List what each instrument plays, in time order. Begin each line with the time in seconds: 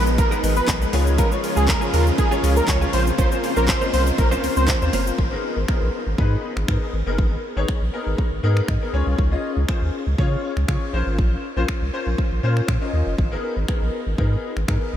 Already playing: sub bass A#1, supersaw synth F3 G#3 B3 D#4, grand piano B3 D#4 G#4 A#4 B4
0.06 muted clean electric guitar stroke, shaker
0.18 analog synth lead A#4, muted clean electric guitar stroke, kick, closed hi-hat, shaker
0.31 clean electric guitar G#3 B3 D#4 A#4, grand piano B3 D#4 G#4 A#4 B4, shaker
0.43 sub bass G#1, clean electric guitar G#3 B3 D#4 A#4, open hi-hat, shaker
0.56 analog synth lead B4, muted clean electric guitar stroke, shaker
0.68 sub bass B1, kick, snare, clap, closed hi-hat, shaker
0.81 grand piano B3 D#4 G#4 A#4 B4, muted clean electric guitar stroke, shaker
0.93 sub bass C#2, supersaw synth C#3 F3 G#3 F4, clean electric guitar G#3 C#4 F4 G#4, grand piano G#3 C#4 F4 G#4 C#5, open hi-hat, shaker
1.06 muted clean electric guitar stroke, shaker
1.18 clean electric guitar G#3 C#4 F4 G#4, analog synth lead A#4, kick, closed hi-hat, shaker
1.31 grand piano G#3 C#4 F4 G#4 C#5, muted clean electric guitar stroke, shaker
1.43 muted clean electric guitar stroke, open hi-hat, shaker
1.56 sub bass C#2, clean electric guitar G#3 C#4 F4 G#4, analog synth lead G#4, shaker
1.68 analog synth lead A#4, kick, snare, clap, closed hi-hat, shaker
1.81 grand piano G#3 C#4 F4 G#4 C#5, clean electric guitar G#3 C#4 F4 G#4, shaker
1.93 sub bass D#2, clean electric guitar G#3 C#4 F4 G#4, analog synth lead A#4, open hi-hat, shaker
2.06 muted clean electric guitar stroke, shaker
2.18 analog synth lead G#4, muted clean electric guitar stroke, kick, closed hi-hat, shaker
2.31 grand piano G#3 C#4 F4 G#4 C#5, clean electric guitar G#3 C#4 F4 G#4, shaker
2.43 sub bass C#2, clean electric guitar G#3 C#4 F4 G#4, open hi-hat, shaker
2.57 analog synth lead A#4, shaker
2.68 sub bass C#2, analog synth lead C#5, muted clean electric guitar stroke, kick, snare, clap, closed hi-hat, shaker
2.81 grand piano G#3 C#4 F4 G#4 C#5, clean electric guitar G#3 C#4 F4 G#4, shaker
2.93 sub bass A#1, clean electric guitar A#3 C#4 F4 C5, supersaw synth A#3 C5, grand piano C4 C#4 F4 A#4 C5, analog synth lead C5, open hi-hat, shaker
3.06 muted clean electric guitar stroke, shaker
3.18 sub bass A#1, clean electric guitar A#3 C#4 F4 C5, analog synth lead C5, kick, closed hi-hat, shaker
3.31 grand piano C4 C#4 F4 A#4 C5, muted clean electric guitar stroke, shaker
3.43 muted clean electric guitar stroke, open hi-hat, shaker
3.56 sub bass A#1, clean electric guitar A#3 C#4 F4 C5, analog synth lead A#4, shaker
3.68 analog synth lead C5, kick, snare, clap, closed hi-hat, shaker
3.81 clean electric guitar A#3 C#4 F4 C5, grand piano C4 C#4 F4 A#4 D#5, shaker
3.93 sub bass C2, clean electric guitar A#3 C#4 F4 C5, analog synth lead C5, open hi-hat, shaker
4.07 muted clean electric guitar stroke, shaker
4.18 sub bass A#1, analog synth lead A#4, muted clean electric guitar stroke, kick, closed hi-hat, shaker
4.31 clean electric guitar A#3 C#4 F4 C5, grand piano C4 C#4 F4 A#4 C5, shaker
4.43 sub bass C#2, clean electric guitar A#3 C#4 F4 C5, open hi-hat, shaker
4.57 sub bass C#2, analog synth lead C5, muted clean electric guitar stroke, shaker
4.68 kick, snare, clap, closed hi-hat, shaker
4.81 sub bass D#2, grand piano C4 C#4 F4 A#4 C5, muted clean electric guitar stroke, shaker
4.93 sub bass F#1, clean electric guitar A#3 C#4 F4 C5, open hi-hat, shaker
5.06 muted clean electric guitar stroke, shaker
5.18 sub bass G#1, kick
5.31 grand piano B3 D#4 G#4 A#4
5.57 sub bass G#1
5.68 grand piano B3 D#4 G#4 A#4, finger snap, kick
5.82 sub bass A#1
6.07 sub bass G#1
6.18 sub bass G#2, grand piano B3 D#4 G#4 B4, kick
6.57 sub bass G#1, finger snap
6.68 sub bass G#2, grand piano B3 D#4 G#4 A#4, finger snap, kick
6.93 sub bass G#1
7.06 sub bass F#1, grand piano B3 D#4 G#4 A#4
7.18 sub bass G#1, kick
7.56 sub bass G#1, grand piano B3 D#4 G#4 C#5
7.68 finger snap, kick
7.82 sub bass A#1
7.93 grand piano B3 D#4 G#4 A#4
8.07 sub bass G#1
8.18 kick
8.32 sub bass G#1
8.43 sub bass G#2, grand piano B3 D#4 G#4 A#4
8.57 finger snap
8.68 sub bass G#2, grand piano D#5, finger snap, kick
8.81 grand piano B3 D#4 G#4 A#4
8.93 sub bass C#2, grand piano C#4 F4 G#4 C#5 G#5
9.07 sub bass C2
9.19 sub bass C#2, kick
9.32 grand piano C#4 F4 G#4 D#5
9.57 sub bass C#2
9.68 grand piano C#4 F4 G#4 C5, finger snap, kick
9.82 sub bass D#2
10.07 sub bass C#2
10.18 sub bass C#3, grand piano C#4 F4 G#4 C#5, kick
10.57 sub bass C#2, finger snap
10.68 sub bass C#3, grand piano C#4 F4 G#4 C#5, finger snap, kick
10.93 sub bass A#1, grand piano C#4 F4 A#4 C5
11.07 sub bass G#1
11.19 sub bass A#1, kick
11.57 sub bass A#1, grand piano C#4 F4 A#4 C5
11.69 finger snap, kick
11.82 sub bass C2
11.93 grand piano C#4 F4 A#4 C5
12.07 sub bass A#1
12.18 kick
12.32 sub bass A#1
12.43 sub bass A#2, grand piano C#4 F4 A#4 C5
12.57 finger snap
12.68 sub bass A#2, finger snap, kick
12.81 grand piano C#4 F4 A#4 D#5
12.93 sub bass D#2
13.07 sub bass F#1
13.18 sub bass G#1, kick
13.31 grand piano B3 D#4 G#4 A#4
13.57 sub bass G#1
13.68 grand piano B3 D#4 G#4 A#4, finger snap, kick
13.82 sub bass A#1
14.07 sub bass G#1
14.18 sub bass G#2, grand piano B3 D#4 G#4 A#4, kick
14.57 sub bass G#1, finger snap
14.68 sub bass G#2, grand piano B3 D#4 G#4 A#4, finger snap, kick
14.94 sub bass G#1